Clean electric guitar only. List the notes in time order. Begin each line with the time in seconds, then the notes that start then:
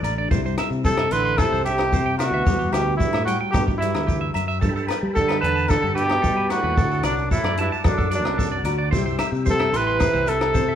0.04 D5
0.18 D5
0.31 C5
0.46 C5
0.59 E5
0.86 C5
1.00 E5
1.13 C6
1.25 C6
1.39 C5
1.53 C5
1.66 E5
1.93 C5
2.06 G5
2.20 E5
2.34 E5
2.47 G4
2.59 G4
2.73 E5
3.00 muted clean electric guitar stroke
3.14 E5
3.28 G5
3.41 G5
3.53 G4
3.67 G4
3.81 E5
4.07 G4
4.21 E5
4.35 E5
4.48 E5
4.61 A4
4.76 A4
4.88 B4
5.15 A4
5.28 B4
5.41 A5
5.56 A5
5.70 A4
5.82 A4
5.95 B4
6.22 A4
6.37 B4
6.50 B4
6.64 B4
6.77 A4
6.92 A4
7.04 D5
7.32 A4
7.45 D5
7.59 A5
7.72 A5
7.85 A4
7.98 A4
8.11 D5
8.38 A4
8.52 D5
8.65 D5
8.78 D5
8.91 C5
9.06 C5
9.19 E5
9.46 C5
9.60 E5
9.74 C6
9.87 C6
9.99 C5
10.13 C5
10.27 E5
10.54 C5
10.69 E5